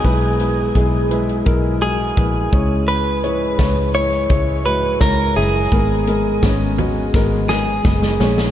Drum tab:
HH |x-x-x-xxx-x-x-x-|x-x-x-xxx-x-x-x-|x-x-x-x---------|
SD |----------------|----o-------o---|----o---o-o-oooo|
FT |----------------|----------------|------o---------|
BD |o---o---o---o-o-|----o---o---o---|o---o---o---o---|